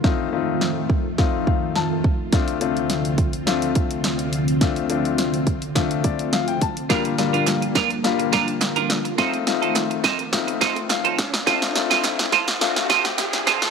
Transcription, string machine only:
0, 0, Header, 1, 2, 480
1, 0, Start_track
1, 0, Tempo, 571429
1, 35, Time_signature, 4, 2, 24, 8
1, 11511, End_track
2, 0, Start_track
2, 0, Title_t, "String machine"
2, 0, Program_c, 0, 50
2, 0, Note_on_c, 0, 65, 82
2, 35, Note_on_c, 0, 41, 79
2, 35, Note_on_c, 0, 51, 72
2, 36, Note_on_c, 0, 57, 72
2, 1936, Note_off_c, 0, 41, 0
2, 1936, Note_off_c, 0, 51, 0
2, 1936, Note_off_c, 0, 57, 0
2, 1953, Note_on_c, 0, 38, 82
2, 1954, Note_on_c, 0, 50, 71
2, 1954, Note_on_c, 0, 60, 74
2, 5761, Note_off_c, 0, 38, 0
2, 5761, Note_off_c, 0, 60, 0
2, 5794, Note_on_c, 0, 58, 76
2, 5795, Note_on_c, 0, 43, 82
2, 7681, Note_off_c, 0, 50, 0
2, 7695, Note_off_c, 0, 58, 0
2, 7696, Note_off_c, 0, 43, 0
2, 7715, Note_on_c, 0, 51, 76
2, 7716, Note_on_c, 0, 41, 83
2, 7716, Note_on_c, 0, 57, 74
2, 9602, Note_off_c, 0, 65, 0
2, 9616, Note_off_c, 0, 41, 0
2, 9616, Note_off_c, 0, 51, 0
2, 9616, Note_off_c, 0, 57, 0
2, 9635, Note_on_c, 0, 38, 82
2, 9636, Note_on_c, 0, 50, 78
2, 9636, Note_on_c, 0, 60, 75
2, 9636, Note_on_c, 0, 65, 88
2, 11511, Note_off_c, 0, 38, 0
2, 11511, Note_off_c, 0, 50, 0
2, 11511, Note_off_c, 0, 60, 0
2, 11511, Note_off_c, 0, 65, 0
2, 11511, End_track
0, 0, End_of_file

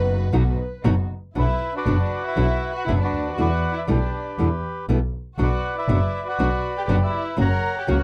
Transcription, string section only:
0, 0, Header, 1, 2, 480
1, 0, Start_track
1, 0, Key_signature, 2, "minor"
1, 0, Tempo, 509338
1, 1275, Time_signature, 4, 2, 24, 8
1, 3667, Tempo, 499168
1, 7651, End_track
2, 0, Start_track
2, 0, Title_t, "String section"
2, 0, Program_c, 0, 48
2, 0, Note_on_c, 0, 59, 72
2, 0, Note_on_c, 0, 63, 68
2, 0, Note_on_c, 0, 66, 79
2, 268, Note_off_c, 0, 59, 0
2, 269, Note_off_c, 0, 63, 0
2, 271, Note_off_c, 0, 66, 0
2, 307, Note_on_c, 0, 63, 68
2, 307, Note_on_c, 0, 66, 79
2, 308, Note_on_c, 0, 59, 72
2, 509, Note_off_c, 0, 59, 0
2, 509, Note_off_c, 0, 63, 0
2, 509, Note_off_c, 0, 66, 0
2, 786, Note_on_c, 0, 59, 73
2, 786, Note_on_c, 0, 63, 63
2, 787, Note_on_c, 0, 66, 77
2, 993, Note_off_c, 0, 59, 0
2, 993, Note_off_c, 0, 63, 0
2, 993, Note_off_c, 0, 66, 0
2, 7651, End_track
0, 0, End_of_file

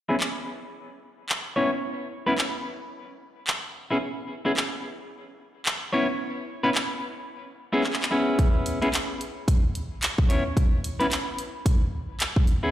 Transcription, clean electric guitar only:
0, 0, Header, 1, 2, 480
1, 0, Start_track
1, 0, Key_signature, 4, "minor"
1, 0, Tempo, 545455
1, 1620, Time_signature, 4, 2, 24, 8
1, 11186, End_track
2, 0, Start_track
2, 0, Title_t, "Clean electric guitar"
2, 0, Program_c, 0, 27
2, 77, Note_on_c, 0, 64, 68
2, 81, Note_on_c, 0, 68, 80
2, 87, Note_on_c, 0, 61, 69
2, 92, Note_on_c, 0, 59, 68
2, 132, Note_off_c, 0, 59, 0
2, 132, Note_off_c, 0, 61, 0
2, 132, Note_off_c, 0, 64, 0
2, 132, Note_off_c, 0, 68, 0
2, 1373, Note_on_c, 0, 73, 83
2, 1378, Note_on_c, 0, 59, 74
2, 1381, Note_on_c, 0, 64, 61
2, 1386, Note_on_c, 0, 61, 57
2, 1496, Note_off_c, 0, 59, 0
2, 1496, Note_off_c, 0, 61, 0
2, 1496, Note_off_c, 0, 64, 0
2, 1496, Note_off_c, 0, 73, 0
2, 1993, Note_on_c, 0, 71, 101
2, 1998, Note_on_c, 0, 59, 89
2, 2003, Note_on_c, 0, 64, 77
2, 2006, Note_on_c, 0, 61, 66
2, 2050, Note_off_c, 0, 59, 0
2, 2050, Note_off_c, 0, 71, 0
2, 2051, Note_off_c, 0, 61, 0
2, 2051, Note_off_c, 0, 64, 0
2, 3437, Note_on_c, 0, 64, 64
2, 3442, Note_on_c, 0, 59, 63
2, 3445, Note_on_c, 0, 68, 67
2, 3452, Note_on_c, 0, 61, 54
2, 3491, Note_off_c, 0, 61, 0
2, 3492, Note_off_c, 0, 59, 0
2, 3492, Note_off_c, 0, 64, 0
2, 3492, Note_off_c, 0, 68, 0
2, 3916, Note_on_c, 0, 64, 70
2, 3920, Note_on_c, 0, 59, 71
2, 3925, Note_on_c, 0, 68, 72
2, 3927, Note_on_c, 0, 61, 67
2, 3971, Note_off_c, 0, 61, 0
2, 3972, Note_off_c, 0, 59, 0
2, 3972, Note_off_c, 0, 64, 0
2, 3972, Note_off_c, 0, 68, 0
2, 5215, Note_on_c, 0, 73, 80
2, 5219, Note_on_c, 0, 59, 74
2, 5225, Note_on_c, 0, 64, 65
2, 5228, Note_on_c, 0, 61, 57
2, 5337, Note_off_c, 0, 59, 0
2, 5337, Note_off_c, 0, 61, 0
2, 5337, Note_off_c, 0, 64, 0
2, 5337, Note_off_c, 0, 73, 0
2, 5838, Note_on_c, 0, 71, 95
2, 5840, Note_on_c, 0, 59, 88
2, 5844, Note_on_c, 0, 64, 75
2, 5847, Note_on_c, 0, 61, 74
2, 5892, Note_off_c, 0, 59, 0
2, 5892, Note_off_c, 0, 61, 0
2, 5892, Note_off_c, 0, 64, 0
2, 5892, Note_off_c, 0, 71, 0
2, 6798, Note_on_c, 0, 64, 71
2, 6802, Note_on_c, 0, 59, 77
2, 6807, Note_on_c, 0, 68, 83
2, 6811, Note_on_c, 0, 61, 67
2, 6883, Note_off_c, 0, 59, 0
2, 6883, Note_off_c, 0, 61, 0
2, 6883, Note_off_c, 0, 64, 0
2, 6883, Note_off_c, 0, 68, 0
2, 7135, Note_on_c, 0, 64, 67
2, 7139, Note_on_c, 0, 59, 73
2, 7145, Note_on_c, 0, 68, 72
2, 7149, Note_on_c, 0, 61, 58
2, 7727, Note_off_c, 0, 61, 0
2, 7727, Note_off_c, 0, 64, 0
2, 7728, Note_off_c, 0, 59, 0
2, 7728, Note_off_c, 0, 68, 0
2, 7759, Note_on_c, 0, 64, 74
2, 7762, Note_on_c, 0, 59, 72
2, 7766, Note_on_c, 0, 68, 74
2, 7770, Note_on_c, 0, 61, 62
2, 7813, Note_off_c, 0, 59, 0
2, 7813, Note_off_c, 0, 61, 0
2, 7813, Note_off_c, 0, 64, 0
2, 7813, Note_off_c, 0, 68, 0
2, 9052, Note_on_c, 0, 73, 80
2, 9057, Note_on_c, 0, 59, 69
2, 9061, Note_on_c, 0, 64, 65
2, 9066, Note_on_c, 0, 61, 59
2, 9175, Note_off_c, 0, 64, 0
2, 9175, Note_off_c, 0, 73, 0
2, 9176, Note_off_c, 0, 59, 0
2, 9176, Note_off_c, 0, 61, 0
2, 9676, Note_on_c, 0, 71, 95
2, 9681, Note_on_c, 0, 59, 81
2, 9685, Note_on_c, 0, 64, 74
2, 9689, Note_on_c, 0, 61, 72
2, 9732, Note_off_c, 0, 59, 0
2, 9732, Note_off_c, 0, 61, 0
2, 9732, Note_off_c, 0, 64, 0
2, 9732, Note_off_c, 0, 71, 0
2, 11114, Note_on_c, 0, 64, 68
2, 11117, Note_on_c, 0, 59, 65
2, 11120, Note_on_c, 0, 68, 66
2, 11127, Note_on_c, 0, 61, 57
2, 11170, Note_off_c, 0, 59, 0
2, 11170, Note_off_c, 0, 64, 0
2, 11170, Note_off_c, 0, 68, 0
2, 11171, Note_off_c, 0, 61, 0
2, 11186, End_track
0, 0, End_of_file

